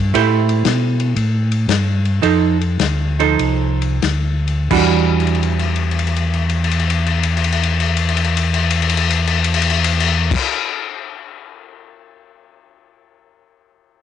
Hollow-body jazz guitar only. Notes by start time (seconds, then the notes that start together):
0.14 A3 E4 G4 C5
2.22 F3 D#4 A4 C5
3.19 F3 D#4 A4 C5
4.71 E3 G3 D4 F#4